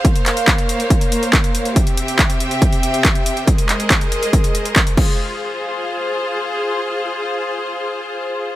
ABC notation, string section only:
X:1
M:4/4
L:1/8
Q:1/4=140
K:Fm
V:1 name="String section"
[B,Bcdf]8 | [C,CG=eg]8 | [A,ABce]6- [A,ABce] [FAc]- | [FAc]8- |
[FAc]8 |]